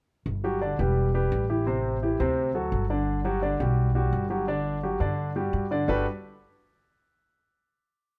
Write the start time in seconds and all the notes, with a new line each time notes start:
0.26 G1
0.44 F#3 F#4 G4
0.61 D3 D4 D5
0.79 E1 G3 G4 B4
1.14 G3 G4 B4
1.32 A1
1.49 E3 E4 G4
1.66 C3 C4 C5
2.02 E3 E4 G4
2.20 D2 C3 C4 C5
2.55 F#3 F#4 A4
2.72 G1
2.90 D3 D4 D5
3.25 F#3 F#4 G4
3.42 D3 D4 D5
3.60 B1 G3 F#4 G4
3.95 G3 F#4 G4
4.13 G1
4.30 F#3 F#4 G4
4.47 D3 D4 D5
4.83 F#3 F#4 G4
5.00 G2 D3 D4 D5
5.36 G3 F#4 G4
5.53 G2
5.71 D3 D4 D5
5.88 G1 G3 D4 F#4 G4 A4 B4